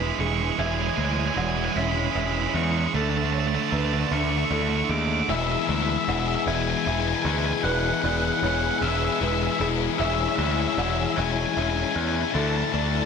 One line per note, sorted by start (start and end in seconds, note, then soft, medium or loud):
0.00 0.11 E1 medium
0.00 0.58 E3 medium
0.00 2.90 E3 medium
0.00 0.09 E3 medium
0.00 0.18 G#3 medium
0.00 0.10 G#3 medium
0.00 0.55 B3 medium
0.00 0.59 B3 medium
0.00 0.57 D4 medium
0.00 2.15 E4 medium
0.00 2.90 G#4 medium
0.00 0.20 B4 medium
0.07 0.17 E3 medium
0.07 0.18 G#3 medium
0.07 0.14 B5 medium
0.15 0.50 E1 medium
0.15 0.25 E3 medium
0.15 0.26 G#3 medium
0.15 0.19 B5 medium
0.20 0.59 G#3 medium
0.20 0.59 G#4 medium
0.20 0.27 C#6 loud
0.26 0.32 E3 medium
0.26 0.33 G#3 medium
0.26 0.35 C#6 medium
0.33 0.40 E3 medium
0.33 0.42 G#3 medium
0.33 0.44 C#6 medium
0.41 0.49 E3 medium
0.41 0.49 G#3 medium
0.41 0.52 C#6 medium
0.49 0.57 E3 medium
0.49 0.57 G#3 medium
0.49 0.60 C#6 medium
0.58 0.89 E1 loud
0.58 0.65 E3 medium
0.58 1.37 E3 medium
0.58 0.66 G#3 medium
0.58 2.92 E4 medium
0.58 2.91 C#5 medium
0.58 1.37 E5 medium
0.58 0.66 G#5 medium
0.65 0.73 E3 medium
0.65 0.74 G#3 medium
0.65 0.74 G#5 medium
0.73 0.80 E3 medium
0.73 0.82 G#3 medium
0.73 0.81 G#5 medium
0.81 0.88 E3 medium
0.81 0.88 G#3 medium
0.81 0.89 G#5 medium
0.89 0.96 E3 medium
0.89 0.96 G#3 medium
0.89 0.96 G#5 medium
0.97 1.29 D2 medium
0.97 1.03 E3 medium
0.97 1.04 G#3 medium
0.97 2.54 G#3 medium
0.97 1.04 G#5 medium
1.04 1.10 E3 medium
1.04 1.12 G#3 medium
1.04 1.12 G#5 medium
1.10 1.18 E3 medium
1.10 1.19 G#3 medium
1.10 1.20 G#5 medium
1.19 1.26 E3 medium
1.19 1.26 G#3 medium
1.19 1.27 G#5 medium
1.26 1.34 E3 medium
1.26 1.34 G#3 medium
1.26 1.34 G#5 medium
1.34 1.68 E1 loud
1.34 1.41 E3 medium
1.34 2.93 E3 medium
1.34 1.42 G#3 medium
1.34 1.77 F#5 medium
1.34 1.41 G#5 medium
1.42 1.49 E3 medium
1.42 1.50 G#3 medium
1.42 1.49 G#5 medium
1.49 1.56 E3 medium
1.49 1.57 G#3 medium
1.49 1.57 G#5 medium
1.56 1.64 E3 medium
1.56 1.65 G#3 medium
1.56 1.64 G#5 medium
1.64 1.71 E3 medium
1.64 1.73 G#3 medium
1.64 1.72 G#5 medium
1.72 2.07 E1 medium
1.72 1.79 E3 medium
1.72 1.80 G#3 medium
1.72 1.80 G#5 medium
1.76 2.94 C#4 medium
1.76 2.14 E5 medium
1.76 1.83 B5 medium
1.80 1.87 E3 medium
1.80 1.87 G#3 medium
1.80 1.91 B5 medium
1.87 1.94 E3 medium
1.87 1.95 G#3 medium
1.91 2.02 E3 medium
1.91 1.99 B5 medium
1.95 2.03 G#3 medium
1.99 2.10 E3 medium
1.99 2.05 B5 medium
2.04 2.10 G#3 medium
2.04 2.12 B5 medium
2.10 2.17 E3 medium
2.10 2.18 G#3 medium
2.10 2.20 B5 medium
2.15 2.46 E1 medium
2.15 2.25 E3 medium
2.15 2.26 G#3 medium
2.15 2.97 E4 medium
2.15 2.94 E5 medium
2.21 2.27 B5 medium
2.25 2.32 E3 medium
2.25 2.33 G#3 medium
2.25 2.35 B5 medium
2.32 2.40 E3 medium
2.32 2.41 G#3 medium
2.32 2.43 B5 medium
2.41 2.49 E3 medium
2.41 2.48 G#3 medium
2.41 2.50 B5 medium
2.49 2.55 E3 medium
2.49 2.56 G#3 medium
2.49 2.55 B5 medium
2.54 2.85 E2 medium
2.54 2.62 E3 medium
2.54 2.94 G#3 medium
2.54 2.63 G#3 medium
2.54 2.63 C#6 medium
2.63 2.70 E3 medium
2.63 2.71 G#3 medium
2.63 2.71 C#6 medium
2.71 2.78 E3 medium
2.71 2.79 G#3 medium
2.71 2.79 C#6 medium
2.79 2.85 E3 medium
2.79 2.86 G#3 medium
2.79 2.87 C#6 medium
2.85 2.93 E3 medium
2.85 2.94 G#3 medium
2.85 2.95 C#6 medium
2.94 3.55 D2 medium
2.94 3.01 D3 medium
2.94 3.71 D3 medium
2.94 5.27 D3 medium
2.94 5.27 A3 medium
2.94 3.01 A3 medium
2.94 5.27 D4 medium
2.94 3.34 A4 loud
2.94 5.27 E5 medium
2.94 3.01 A5 medium
3.01 3.08 D3 medium
3.01 3.09 A3 medium
3.01 3.09 A5 medium
3.09 3.16 D3 medium
3.09 3.17 A3 medium
3.09 3.17 A5 medium
3.16 3.23 D3 medium
3.16 3.24 A3 medium
3.16 3.25 A5 medium
3.23 3.31 D3 medium
3.23 3.32 A3 medium
3.23 3.32 A5 medium
3.31 3.38 D3 medium
3.31 3.40 A3 medium
3.31 4.90 A3 medium
3.31 3.73 C#5 medium
3.31 3.39 A5 medium
3.38 3.46 D3 medium
3.38 3.47 A3 medium
3.38 3.47 A5 medium
3.47 3.54 D3 medium
3.47 3.54 A3 medium
3.47 3.54 A5 medium
3.54 3.61 D3 medium
3.54 3.62 A3 medium
3.54 3.62 A5 medium
3.62 3.69 D3 medium
3.62 3.70 A3 medium
3.62 3.70 A5 medium
3.69 4.03 D2 medium
3.69 3.77 D3 medium
3.69 5.29 D3 medium
3.69 3.77 A3 medium
3.69 4.51 B4 medium
3.69 3.76 A5 medium
3.77 3.85 D3 medium
3.77 3.84 A3 medium
3.77 3.84 A5 medium
3.84 3.93 D3 medium
3.84 3.92 A3 medium
3.84 3.93 A5 medium
3.93 4.00 D3 medium
3.93 4.00 A3 medium
3.93 3.99 A5 medium
3.99 4.06 D3 medium
3.99 4.08 A3 medium
3.99 4.07 A5 medium
4.07 4.14 D3 medium
4.07 4.16 A3 medium
4.07 4.16 A5 medium
4.11 4.42 D2 loud
4.11 4.22 D3 medium
4.11 5.29 D4 medium
4.11 4.20 C#6 loud
4.17 4.23 A3 medium
4.17 4.28 C#6 medium
4.23 4.30 D3 medium
4.23 4.31 A3 medium
4.29 4.37 D3 medium
4.29 4.38 A3 medium
4.29 4.37 C#6 medium
4.37 4.45 D3 medium
4.37 4.45 A3 medium
4.37 4.45 C#6 medium
4.45 4.52 D3 medium
4.45 4.53 A3 medium
4.45 4.53 C#6 medium
4.50 4.81 D2 loud
4.50 4.60 D3 medium
4.50 4.62 A3 medium
4.50 5.30 E4 medium
4.50 4.91 A4 medium
4.50 4.61 C#6 medium
4.61 4.68 D3 medium
4.61 4.68 A3 medium
4.61 4.69 C#6 medium
4.69 4.75 D3 medium
4.69 4.76 A3 medium
4.69 4.77 C#6 medium
4.75 4.83 D3 medium
4.75 4.84 A3 medium
4.75 4.85 C#6 medium
4.83 4.91 D3 medium
4.83 4.91 A3 medium
4.83 4.90 C#6 medium
4.89 5.20 D#2 medium
4.89 4.99 D3 medium
4.89 5.30 A3 medium
4.89 4.98 A3 medium
4.89 5.30 G#4 medium
4.89 4.98 D6 medium
4.98 5.06 D3 medium
4.98 5.06 A3 medium
4.98 5.05 D6 medium
5.06 5.14 D3 medium
5.06 5.14 A3 medium
5.06 5.12 D6 medium
5.13 5.21 D3 medium
5.13 5.22 A3 medium
5.13 5.19 D6 medium
5.20 5.29 D3 medium
5.20 5.30 A3 medium
5.20 5.27 D6 medium
5.28 5.55 E1 loud
5.28 6.08 E3 loud
5.28 6.47 E3 medium
5.28 5.71 G#3 loud
5.28 5.70 B3 loud
5.28 13.05 E4 medium
5.28 5.69 E4 loud
5.28 12.31 G#4 medium
5.28 9.95 B4 medium
5.28 5.36 E5 medium
5.28 6.08 E5 loud
5.28 12.31 G#5 medium
5.36 5.44 E5 medium
5.44 5.51 E5 medium
5.52 5.59 E5 medium
5.59 5.67 E5 medium
5.67 5.95 D2 loud
5.67 6.86 G#3 medium
5.67 6.10 B3 medium
5.67 6.11 E4 medium
5.67 5.74 E5 medium
5.72 6.09 G#3 medium
5.72 5.82 E5 medium
5.82 5.89 E5 medium
5.89 5.97 E5 medium
5.98 6.04 E5 medium
6.04 6.34 E1 loud
6.04 8.04 B3 medium
6.04 6.12 E5 medium
6.04 6.47 F#5 medium
6.08 6.86 E3 medium
6.08 6.50 G#3 medium
6.08 6.48 B3 medium
6.08 6.47 E4 medium
6.08 6.19 E5 medium
6.20 6.27 E5 medium
6.28 6.35 E5 medium
6.35 6.43 E5 medium
6.46 6.73 E1 loud
6.46 7.64 E3 medium
6.46 6.87 G#3 medium
6.46 6.87 B3 medium
6.46 6.88 E4 medium
6.46 6.85 E5 medium
6.46 6.55 G#5 medium
6.55 6.61 G#5 medium
6.62 6.69 G#5 medium
6.70 6.77 G#5 medium
6.77 6.85 G#5 medium
6.85 7.13 E1 medium
6.85 7.65 E3 medium
6.85 8.03 G#3 medium
6.85 7.28 G#3 medium
6.85 7.26 B3 medium
6.85 7.25 E4 medium
6.85 7.65 E5 medium
6.85 6.92 G#5 medium
6.93 7.00 G#5 medium
7.01 7.08 G#5 medium
7.08 7.15 G#5 medium
7.15 7.22 G#5 medium
7.22 7.51 D2 loud
7.22 9.60 E4 medium
7.22 7.67 E4 medium
7.22 7.30 G#5 medium
7.27 7.66 G#3 medium
7.27 7.65 B3 medium
7.27 7.38 G#5 medium
7.38 7.45 G#5 medium
7.46 7.53 G#5 medium
7.53 7.61 G#5 medium
7.61 7.90 E1 loud
7.61 8.82 E3 medium
7.61 8.43 E3 loud
7.61 8.04 B4 loud
7.61 7.71 F#5 medium
7.61 7.63 G#5 medium
7.66 8.06 G#3 loud
7.66 8.05 B3 loud
7.66 8.04 E4 loud
7.72 7.79 F#5 medium
7.79 7.86 F#5 medium
7.87 7.94 F#5 medium
7.94 8.01 F#5 medium
8.02 8.30 E1 loud
8.02 9.20 G#3 medium
8.02 8.45 E4 medium
8.02 8.43 D5 medium
8.02 8.08 F#5 medium
8.06 8.44 G#3 medium
8.06 8.44 B3 medium
8.06 8.16 F#5 medium
8.17 8.24 F#5 medium
8.25 8.32 F#5 medium
8.32 8.39 F#5 medium
8.40 8.69 E1 loud
8.40 9.20 E3 medium
8.40 10.00 B3 medium
8.40 9.22 C#5 medium
8.40 8.47 F#5 medium
8.44 8.83 G#3 medium
8.44 8.82 B3 medium
8.44 8.82 E4 medium
8.44 8.55 F#5 medium
8.55 8.63 F#5 medium
8.63 8.70 F#5 medium
8.71 8.78 F#5 medium
8.79 9.08 E1 loud
8.79 9.23 E4 medium
8.79 8.88 E5 loud
8.79 8.86 F#5 medium
8.83 9.99 E3 medium
8.83 9.21 G#3 medium
8.83 9.21 B3 medium
8.89 8.96 E5 medium
8.97 9.04 E5 medium
9.05 9.12 E5 medium
9.12 9.20 E5 loud
9.20 9.48 E1 loud
9.20 9.98 E3 medium
9.20 10.00 G#3 medium
9.20 9.62 G#3 medium
9.20 9.61 B3 medium
9.20 9.60 E4 loud
9.20 9.61 B4 medium
9.20 9.27 E5 medium
9.27 9.34 E5 medium
9.34 9.42 E5 medium
9.43 9.51 E5 medium
9.52 9.59 E5 medium
9.59 9.87 E1 loud
9.59 9.98 B3 medium
9.59 11.95 E4 medium
9.59 10.01 E4 medium
9.59 10.00 G#4 medium
9.59 9.67 E5 medium
9.63 9.99 G#3 medium
9.98 10.26 E1 loud
9.98 10.77 E3 loud
9.98 11.16 E3 medium
9.98 10.40 G#3 loud
9.98 10.38 C#4 loud
9.98 10.38 E4 loud
9.98 12.32 C#5 medium
9.98 10.05 E5 loud
9.98 10.78 E5 loud
10.05 10.13 E5 medium
10.15 10.20 E5 medium
10.21 10.28 E5 medium
10.28 10.35 E5 medium
10.36 10.65 D2 loud
10.36 11.55 G#3 medium
10.36 10.78 C#4 medium
10.36 10.79 E4 medium
10.36 10.43 E5 medium
10.41 10.77 G#3 medium
10.41 10.51 E5 medium
10.51 10.59 E5 medium
10.60 10.67 E5 medium
10.68 10.75 E5 medium
10.75 11.04 E1 loud
10.75 11.55 E3 medium
10.75 11.17 G#3 medium
10.75 12.35 C#4 medium
10.75 10.81 E5 medium
10.75 11.18 F#5 medium
10.79 11.16 C#4 medium
10.79 11.15 E4 medium
10.79 10.89 E5 medium
10.90 10.98 E5 medium
10.98 11.06 E5 medium
11.06 11.12 E5 medium
11.12 12.34 E3 medium
11.12 11.58 E4 medium
11.12 11.20 E5 medium
11.12 11.23 G#5 loud
11.17 11.44 E1 loud
11.17 11.56 G#3 medium
11.17 11.56 C#4 medium
11.17 11.55 E5 medium
11.23 11.31 G#5 medium
11.31 11.38 G#5 medium
11.39 11.46 G#5 medium
11.46 11.54 G#5 medium
11.54 11.83 E1 medium
11.54 12.34 E3 medium
11.54 12.35 G#3 medium
11.54 11.96 G#3 medium
11.54 11.95 C#4 medium
11.54 12.35 E5 medium
11.54 11.62 G#5 medium
11.59 11.95 E4 medium
11.59 11.70 G#5 medium
11.70 11.77 G#5 medium
11.77 11.84 G#5 loud
11.84 11.92 G#5 medium
11.92 12.22 E2 loud
11.92 12.33 C#4 medium
11.92 12.37 E4 medium
11.92 12.36 E4 medium
11.92 12.00 G#5 medium
11.98 12.34 G#3 medium
11.98 12.07 G#5 medium
12.08 12.15 G#5 medium
12.16 12.21 G#5 medium
12.22 12.30 G#5 medium
12.31 12.61 D2 loud
12.31 13.05 D3 medium
12.31 13.05 D3 loud
12.31 13.05 A4 medium
12.31 12.74 A4 loud
12.31 13.05 D5 medium
12.31 12.33 G#5 medium
12.31 12.41 A5 medium
12.35 12.74 A3 loud
12.35 12.73 D4 loud
12.35 12.73 E4 loud
12.35 13.05 A5 medium
12.41 12.49 A5 medium
12.49 12.56 A5 medium
12.57 12.64 A5 medium
12.65 12.72 A5 medium
12.72 13.00 D2 loud
12.72 13.05 A3 medium
12.72 13.05 D4 medium
12.72 13.05 E4 medium
12.72 13.05 D5 medium
12.72 12.79 A5 medium
12.79 12.86 A5 medium
12.87 12.94 A5 medium
12.95 13.03 A5 medium